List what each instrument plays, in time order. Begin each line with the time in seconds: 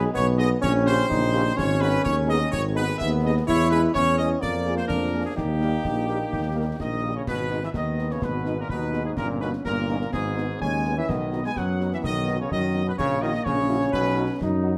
Already playing: trombone section D#3 G#3, euphonium G#4
0.14 tuba B1, euphonium B3, trumpet section C#5, concert bass drum, snare
0.38 french horn section G#3 B3 D#4, trumpet section D#5, snare
0.61 tuba A#1, trombone section C#3 G3, euphonium C#4, trumpet section C#5, concert bass drum, snare
0.86 french horn section A#3 C#4 G4, trumpet section C5, snare
0.99 snare
1.09 tuba A#1, euphonium D#4, concert bass drum, snare
1.33 french horn section A#3 C#4 G4
1.57 tuba G#1, trombone section D#3 G#3, euphonium C#4, trumpet section C#5, concert bass drum, snare, crash
1.80 french horn section B3 D#4 G#4, trumpet section B4, snare
2.04 tuba D#2, trumpet section C#5, concert bass drum, snare
2.27 french horn section B3 D#4 G#4, trumpet section D#5, snare
2.51 tuba G#1, trumpet section C#5, concert bass drum, snare
2.75 french horn section B3 D#4 G#4, trumpet section B4, snare
2.89 snare
2.99 tuba D#2, euphonium B3, trumpet section E5, concert bass drum, snare
3.24 french horn section B3 D#4 G#4, trumpet section D#5
3.47 tuba E2, trombone section E3 G#3, euphonium E4, trumpet section C#5, concert bass drum, snare, crash
3.70 french horn section G#3 C#4 G#4, trumpet section B4, snare
3.94 tuba E2, euphonium C#4, trumpet section C#5, concert bass drum, snare
4.18 french horn section G#3 C#4 G#4, trumpet section D#5, snare
4.41 tuba F2, trombone section F3 A#3, euphonium A#3, trumpet section D5, concert bass drum, snare
4.66 french horn section F3 A#3 G#4, snare
4.77 trumpet section C5, snare
4.88 tuba F2, euphonium D4, trumpet section A#4, concert bass drum, snare
5.14 french horn section F3 A#3 G#4
5.25 trumpet section G#4
5.36 tuba D#2, trombone section D#3 A#3, euphonium D#4, trumpet section G4, concert bass drum, snare, crash
5.60 french horn section G3 A#3 G4, snare
5.84 tuba A#1, concert bass drum, snare
6.09 french horn section G3 A#3 G4, snare
6.33 tuba D#2, concert bass drum, snare
6.55 french horn section G3 A#3 G4
6.80 tuba A#1, euphonium D#3, trumpet section D#5, concert bass drum, snare
7.03 french horn section G3 A#3 G4
7.15 euphonium C#3, trumpet section C#5
7.27 tuba G#1, euphonium B2, trumpet section B4, concert bass drum, snare, crash
7.50 french horn section G#3 B3 D#4, snare
7.63 euphonium E3, trumpet section E5, snare
7.74 tuba D#2, euphonium D#3, trombone section B3, trumpet section D#5, concert bass drum, snare
7.98 french horn section G#3 B3 D#4, snare
8.10 euphonium C#3, trumpet section C#5, snare
8.22 tuba G#1, euphonium B2, trumpet section B4, concert bass drum, snare
8.46 french horn section G#3 B3 D#4, snare
8.60 euphonium A#2, trumpet section A#4
8.69 tuba D#2, euphonium B2, trombone section D#4, trumpet section B4, concert bass drum
8.92 french horn section G#3 B3 D#4, snare
9.05 euphonium G#2, trumpet section G#4
9.17 tuba G1, euphonium A#2, trombone section C#4, trumpet section A#4, concert bass drum, snare, crash
9.40 euphonium B2, french horn section A#3 C#4 D#4, trumpet section B4, snare
9.53 snare
9.65 tuba G1, euphonium A#2, trombone section A#3, trumpet section A#4, concert bass drum, snare
9.89 french horn section A#3 C#4 D#4, snare
10.01 snare
10.12 tuba G#1, euphonium G#2, trombone section B3, trumpet section G#4, concert bass drum, snare
10.37 french horn section B3 D#4 G#4, snare
10.59 tuba D#2, euphonium G#3, trombone section C#4, trumpet section G#5, concert bass drum
10.85 french horn section B3 D#4 G#4, snare
10.97 euphonium E3, trumpet section E5
11.07 tuba B1, euphonium D#3, trombone section B3, trumpet section D#5, concert bass drum, snare, crash
11.32 french horn section B3 D#4 F#4, snare
11.44 euphonium G#3, trumpet section G#5, snare
11.56 tuba F#2, euphonium F#3, trumpet section F#5, concert bass drum, snare
11.80 french horn section B3 D#4 F#4, snare
11.92 euphonium E3, trumpet section E5, snare
12.03 tuba B1, euphonium D#3, trumpet section D#5, concert bass drum, snare
12.27 french horn section B3 D#4 F#4, snare
12.40 euphonium C#3, trumpet section C#5
12.51 tuba F#2, euphonium D#3, trombone section F#3, trumpet section D#5, concert bass drum
12.74 french horn section B3 D#4 F#4, snare
12.87 euphonium B2, trumpet section B4
12.98 tuba A#1, euphonium C#3, trombone section A#3, trumpet section C#5, concert bass drum, snare, crash
13.22 euphonium D#3, french horn section F#3 E4 F#4, trumpet section D#5, snare
13.34 snare
13.44 tuba A#1, euphonium C#3, trombone section C#4, trumpet section C#5, concert bass drum, snare
13.70 french horn section F#3 E4 F#4, snare
13.81 snare
13.92 tuba B1, euphonium B2, trumpet section B4, concert bass drum, snare
14.17 french horn section F#3 D#4 F#4
14.41 tuba F#2, trombone section D#4, concert bass drum, snare
14.63 french horn section F#3 D#4 F#4